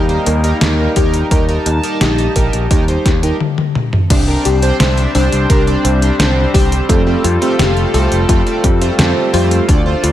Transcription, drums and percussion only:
0.09 closed hi-hat soft
0.26 closed hi-hat medium
0.44 closed hi-hat medium
0.61 snare loud
0.61 closed hi-hat medium
0.96 kick loud
0.96 closed hi-hat medium
1.14 closed hi-hat soft
1.31 kick loud
1.31 closed hi-hat medium
1.49 closed hi-hat soft
1.66 closed hi-hat medium
1.84 closed hi-hat medium
2.01 snare loud
2.01 closed hi-hat medium
2.18 closed hi-hat soft
2.36 kick medium
2.36 closed hi-hat medium
2.53 closed hi-hat medium
2.71 kick loud
2.71 closed hi-hat medium
2.88 closed hi-hat soft
3.06 kick loud
3.06 snare medium
3.06 closed hi-hat medium
3.23 closed hi-hat medium
3.40 high tom medium
3.58 high tom medium
3.75 mid tom medium
3.93 mid tom medium
4.10 kick loud
4.10 closed hi-hat medium
4.10 crash loud
4.45 closed hi-hat medium
4.62 closed hi-hat medium
4.80 snare loud
4.80 closed hi-hat medium
4.97 closed hi-hat soft
5.15 open hi-hat medium
5.32 closed hi-hat medium
5.50 kick loud
5.50 closed hi-hat medium
5.67 closed hi-hat soft
5.85 closed hi-hat medium
6.02 closed hi-hat medium
6.20 snare loud
6.20 closed hi-hat medium
6.54 kick loud
6.54 open hi-hat medium
6.72 closed hi-hat medium
6.89 kick loud
6.89 closed hi-hat medium
7.24 closed hi-hat medium
7.42 closed hi-hat medium
7.59 snare loud
7.59 closed hi-hat medium
7.77 closed hi-hat soft
7.94 open hi-hat medium
8.12 closed hi-hat medium
8.29 kick loud
8.29 closed hi-hat medium
8.47 closed hi-hat soft
8.64 kick loud
8.64 closed hi-hat medium
8.81 closed hi-hat medium
8.99 snare loud
8.99 closed hi-hat medium
9.34 open hi-hat medium
9.51 closed hi-hat medium
9.69 kick loud
9.69 closed hi-hat medium
10.04 closed hi-hat medium

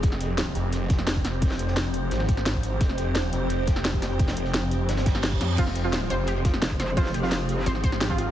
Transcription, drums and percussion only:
0.03 kick loud
0.03 closed hi-hat medium
0.12 snare soft
0.21 closed hi-hat medium
0.38 snare loud
0.38 closed hi-hat medium
0.55 closed hi-hat medium
0.72 closed hi-hat medium
0.90 kick loud
0.90 snare soft
0.90 closed hi-hat medium
0.99 snare soft
1.07 snare loud
1.07 closed hi-hat medium
1.07 closed hi-hat loud
1.15 kick medium
1.15 closed hi-hat soft
1.25 snare medium
1.25 closed hi-hat medium
1.33 closed hi-hat soft
1.42 kick loud
1.42 closed hi-hat medium
1.42 open hi-hat medium
1.51 snare soft
1.59 closed hi-hat medium
1.68 snare medium
1.76 snare loud
1.76 closed hi-hat medium
1.94 closed hi-hat medium
1.94 closed hi-hat loud
2.11 closed hi-hat medium
2.20 snare soft
2.29 kick loud
2.29 closed hi-hat medium
2.29 closed hi-hat loud
2.37 snare soft
2.46 snare loud
2.46 closed hi-hat medium
2.55 kick medium
2.55 snare soft
2.63 closed hi-hat loud
2.63 closed hi-hat medium
2.81 kick loud
2.81 closed hi-hat loud
2.81 closed hi-hat medium
2.89 snare soft
2.98 closed hi-hat medium
2.98 closed hi-hat loud
3.14 snare loud
3.14 closed hi-hat medium
3.32 closed hi-hat medium
3.32 closed hi-hat loud
3.50 closed hi-hat medium
3.67 kick loud
3.67 snare soft
3.67 closed hi-hat medium
3.67 closed hi-hat loud
3.76 snare soft
3.85 snare loud
3.85 closed hi-hat medium
3.85 closed hi-hat loud
3.93 kick medium
3.93 closed hi-hat soft
4.02 snare loud
4.02 snare medium
4.02 closed hi-hat loud
4.02 closed hi-hat medium
4.19 kick loud
4.19 closed hi-hat medium
4.28 snare soft
4.28 snare medium
4.28 snare soft
4.28 closed hi-hat medium
4.37 closed hi-hat medium
4.46 closed hi-hat medium
4.54 snare loud
4.54 closed hi-hat medium
4.71 closed hi-hat medium
4.71 closed hi-hat loud
4.89 snare loud
4.89 closed hi-hat medium
4.97 snare loud
4.97 snare soft
4.97 closed hi-hat medium
5.06 kick loud
5.06 snare loud
5.06 closed hi-hat loud
5.06 closed hi-hat medium
5.15 snare soft
5.23 snare loud
5.23 closed hi-hat medium
5.31 kick medium
5.31 snare medium
5.41 snare medium
5.41 closed hi-hat medium
5.41 closed hi-hat loud
5.58 kick loud
5.58 closed hi-hat medium
5.58 crash medium
5.67 snare soft
5.76 closed hi-hat medium
5.76 closed hi-hat loud
5.92 snare loud
5.92 closed hi-hat medium
6.10 closed hi-hat medium
6.27 closed hi-hat medium
6.45 kick loud
6.45 snare medium
6.45 closed hi-hat loud
6.45 closed hi-hat medium
6.54 snare medium
6.62 snare loud
6.62 closed hi-hat medium
6.71 kick medium
6.71 closed hi-hat soft
6.80 snare medium
6.80 closed hi-hat loud
6.80 closed hi-hat medium
6.88 closed hi-hat soft
6.97 kick loud
6.97 closed hi-hat medium
6.97 open hi-hat medium
7.05 snare soft
7.14 closed hi-hat medium
7.24 snare medium
7.32 snare loud
7.32 closed hi-hat medium
7.49 closed hi-hat loud
7.49 closed hi-hat medium
7.66 closed hi-hat medium
7.75 snare soft
7.84 kick loud
7.84 closed hi-hat loud
7.84 closed hi-hat medium
7.92 snare medium
8.00 snare loud
8.00 closed hi-hat medium
8.09 kick medium
8.09 snare medium
8.18 closed hi-hat medium
8.18 closed hi-hat loud

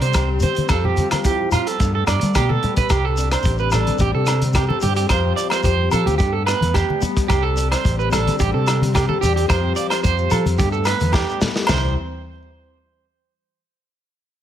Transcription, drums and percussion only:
0.02 closed hi-hat medium
0.13 kick medium
0.13 cross-stick medium
0.13 closed hi-hat medium
0.13 low agogo medium
0.13 shekere medium
0.40 closed hi-hat medium
0.40 high conga medium
0.40 low conga medium
0.40 shekere loud
0.54 closed hi-hat soft
0.54 high conga medium
0.54 shekere soft
0.69 kick medium
0.69 cross-stick medium
0.69 closed hi-hat medium
0.69 low agogo medium
0.69 shekere medium
0.84 low conga medium
0.97 closed hi-hat medium
0.97 high conga medium
0.97 shekere medium
1.11 cross-stick medium
1.11 closed hi-hat soft
1.11 high conga medium
1.11 low agogo medium
1.11 shekere soft
1.24 kick medium
1.24 closed hi-hat medium
1.24 shekere medium
1.51 closed hi-hat medium
1.51 low conga medium
1.51 low agogo medium
1.51 shekere medium
1.67 closed hi-hat soft
1.67 shekere soft
1.80 kick medium
1.80 closed hi-hat soft
1.80 shekere medium
2.07 cross-stick medium
2.07 closed hi-hat soft
2.07 low agogo medium
2.07 shekere medium
2.21 closed hi-hat soft
2.21 high conga medium
2.21 shekere soft
2.35 kick medium
2.35 cross-stick medium
2.35 closed hi-hat medium
2.35 high conga medium
2.35 low agogo medium
2.35 shekere medium
2.50 high conga medium
2.63 closed hi-hat soft
2.63 low conga medium
2.76 kick medium
2.76 closed hi-hat soft
2.76 low conga medium
2.76 shekere soft
2.89 kick medium
2.89 cross-stick medium
2.89 closed hi-hat soft
2.89 low agogo medium
2.89 shekere medium
3.17 closed hi-hat medium
3.17 shekere medium
3.32 cross-stick medium
3.32 closed hi-hat soft
3.32 low agogo medium
3.43 kick medium
3.43 closed hi-hat medium
3.43 shekere loud
3.58 shekere soft
3.71 cross-stick medium
3.71 closed hi-hat medium
3.71 low conga medium
3.71 low agogo medium
3.71 shekere medium
3.87 closed hi-hat medium
3.87 high conga medium
3.98 kick medium
3.98 closed hi-hat soft
3.98 shekere medium
4.26 cross-stick medium
4.26 closed hi-hat medium
4.26 low agogo medium
4.26 shekere medium
4.42 closed hi-hat medium
4.42 high conga medium
4.53 kick medium
4.53 cross-stick medium
4.53 closed hi-hat medium
4.53 low agogo medium
4.53 shekere medium
4.70 high conga medium
4.81 closed hi-hat medium
4.81 high conga medium
4.81 low conga medium
4.81 shekere medium
4.95 closed hi-hat medium
4.95 shekere soft
5.09 kick medium
5.09 cross-stick medium
5.09 closed hi-hat soft
5.09 low agogo medium
5.09 shekere medium
5.37 closed hi-hat soft
5.37 shekere medium
5.50 cross-stick medium
5.50 closed hi-hat medium
5.50 low agogo medium
5.63 kick medium
5.63 closed hi-hat medium
5.63 shekere loud
5.91 closed hi-hat soft
5.91 low conga medium
5.91 low agogo medium
5.91 shekere medium
6.07 closed hi-hat soft
6.07 high conga medium
6.19 kick medium
6.19 closed hi-hat soft
6.19 shekere medium
6.47 cross-stick medium
6.47 closed hi-hat medium
6.47 low agogo medium
6.47 shekere medium
6.62 closed hi-hat soft
6.62 high conga medium
6.74 kick medium
6.74 cross-stick medium
6.74 closed hi-hat soft
6.74 low agogo medium
6.74 shekere loud
6.90 high conga medium
7.02 closed hi-hat medium
7.02 high conga medium
7.02 low conga medium
7.02 shekere medium
7.16 kick medium
7.16 closed hi-hat medium
7.16 shekere soft
7.29 kick medium
7.29 cross-stick medium
7.29 closed hi-hat soft
7.29 low agogo medium
7.29 shekere loud
7.57 closed hi-hat medium
7.57 shekere medium
7.72 cross-stick medium
7.72 closed hi-hat medium
7.72 low agogo medium
7.85 kick medium
7.85 closed hi-hat medium
7.85 shekere loud
7.99 shekere soft
8.12 cross-stick medium
8.12 closed hi-hat soft
8.12 low conga medium
8.12 low agogo medium
8.12 shekere medium
8.27 closed hi-hat soft
8.27 high conga medium
8.39 kick medium
8.39 closed hi-hat soft
8.39 shekere medium
8.67 cross-stick medium
8.67 closed hi-hat medium
8.67 low agogo medium
8.67 shekere medium
8.82 closed hi-hat medium
8.82 high conga medium
8.94 kick medium
8.94 cross-stick medium
8.94 closed hi-hat medium
8.94 low agogo medium
8.94 shekere medium
9.09 high conga medium
9.23 closed hi-hat medium
9.23 low conga medium
9.23 shekere medium
9.37 closed hi-hat medium
9.50 kick medium
9.50 cross-stick medium
9.50 closed hi-hat medium
9.50 low agogo medium
9.50 shekere loud
9.76 closed hi-hat medium
9.76 shekere medium
9.90 cross-stick medium
9.90 closed hi-hat medium
9.90 low agogo medium
10.04 kick medium
10.04 closed hi-hat medium
10.04 shekere loud
10.18 shekere soft
10.30 closed hi-hat soft
10.30 low conga medium
10.30 low agogo medium
10.30 shekere medium
10.46 closed hi-hat medium
10.46 high conga medium
10.46 shekere soft
10.58 kick medium
10.58 closed hi-hat medium
10.58 high conga medium
10.58 shekere medium
10.72 shekere soft
10.85 cross-stick medium
10.85 closed hi-hat medium
10.85 low agogo medium
10.85 shekere medium
11.00 closed hi-hat soft
11.00 high conga medium
11.00 shekere soft
11.13 kick medium
11.13 snare medium
11.13 low agogo medium
11.13 shekere medium
11.29 shekere soft
11.41 snare medium
11.41 high conga medium
11.41 low conga medium
11.41 shekere medium
11.55 snare medium
11.55 shekere soft
11.67 snare medium
11.67 floor tom medium
11.67 ride bell medium
11.67 high conga medium
11.67 low agogo loud
11.67 shekere medium

